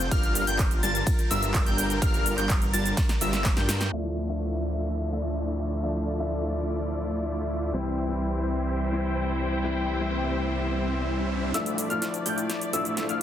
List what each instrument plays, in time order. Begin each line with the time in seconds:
0.00 cabasa
0.11 detuned saw bass G1, string section G3 F4 A#4, supersaw synth G3 D4 F4 A#4 F5, digital synth lead F6, kick, closed hi-hat, ride, cabasa
0.23 closed hi-hat, cabasa
0.35 open hi-hat, cabasa
0.47 detuned saw bass G1, supersaw synth G3 D4 F4 A#4 G5, digital synth lead G6, closed hi-hat, cabasa
0.59 kick, clap, closed hi-hat, ride, cabasa
0.71 closed hi-hat, cabasa
0.83 detuned saw bass G1, supersaw synth G3 D4 F4 A#4 A5, digital synth lead A6, open hi-hat, cabasa
0.95 closed hi-hat, cabasa
1.07 kick, closed hi-hat, ride, cabasa
1.19 closed hi-hat, cabasa
1.31 detuned saw bass G1, supersaw synth G3 D4 F4 A#4 E5, digital synth lead E6, open hi-hat, cabasa
1.43 closed hi-hat, cabasa
1.54 kick, clap, closed hi-hat, ride, cabasa
1.66 detuned saw bass G1, supersaw synth G3 D4 F4 A#4 G5, digital synth lead G6, closed hi-hat, cabasa
1.78 open hi-hat, cabasa
1.90 closed hi-hat, cabasa
2.02 detuned saw bass G1, supersaw synth G3 D4 F4 A#4 F5, digital synth lead F6, kick, closed hi-hat, ride, cabasa
2.14 closed hi-hat, cabasa
2.26 open hi-hat, cabasa
2.38 detuned saw bass G1, supersaw synth G3 D4 F4 A#4 G5, digital synth lead G6, clap, closed hi-hat, cabasa
2.50 kick, clap, closed hi-hat, ride, cabasa
2.62 closed hi-hat, cabasa
2.73 detuned saw bass G1, supersaw synth G3 D4 F4 A#4 A5, digital synth lead A6, open hi-hat, cabasa
2.85 closed hi-hat, cabasa
2.97 kick, snare, closed hi-hat, ride, cabasa
3.09 snare, closed hi-hat, cabasa
3.21 detuned saw bass G1, supersaw synth G3 D4 F4 A#4 E5, digital synth lead E6, open hi-hat, cabasa
3.33 snare, closed hi-hat, cabasa
3.45 kick, snare, clap, closed hi-hat, ride, cabasa
3.57 detuned saw bass G2, supersaw synth G3 D4 F4 A#4 G5, digital synth lead G6, snare, closed hi-hat, cabasa
3.69 snare, open hi-hat, cabasa
3.81 snare, closed hi-hat, cabasa
3.92 detuned saw bass D2, grand piano F3 A3 D4 E5, string section F3 D4 E5, supersaw synth A3 E4 F4 D5 E5, crash, downlifter
4.27 grand piano F3 A3 D4 E5
5.10 grand piano F3 A3 D4 E5
5.82 grand piano F3 A3 D4 E5, string section D5
6.18 grand piano F3 A3 D4 E5
7.73 detuned saw bass C2, grand piano E3 G3 C4 E4, supersaw synth G3 C4 E4 C5 E5, string section E4 C5 G5, riser
8.08 grand piano E3 G3 C4 E4
8.91 grand piano E3 G3 C4 E4
9.63 grand piano E3 G3 C4 E4
9.98 grand piano E3 G3 C4 E4
11.54 detuned saw bass D2, grand piano F3 A3 D4 E5, supersaw synth A3 E4 F4 D5 E5, string section D5, digital synth lead E6, snare, closed hi-hat, riser, cabasa
11.66 closed hi-hat, cabasa
11.78 open hi-hat, cabasa
11.89 detuned saw bass D2, grand piano F3 A3 D4 E4, supersaw synth A3 E4 F4 D5 F5, digital synth lead F6, closed hi-hat, cabasa
12.02 snare, closed hi-hat, cabasa
12.14 closed hi-hat, cabasa
12.26 detuned saw bass D2, supersaw synth A3 E4 F4 D5 G5, digital synth lead G6, open hi-hat, cabasa
12.38 closed hi-hat, cabasa
12.50 snare, closed hi-hat, cabasa
12.61 closed hi-hat, cabasa
12.72 detuned saw bass D2, grand piano F3 A3 D4, supersaw synth A3 E4 F4 D5 E5, digital synth lead E6, open hi-hat, cabasa
12.85 closed hi-hat, cabasa
12.97 snare, closed hi-hat, cabasa
13.09 detuned saw bass D2, supersaw synth A3 E4 F4 D5 F5, digital synth lead F6, closed hi-hat, cabasa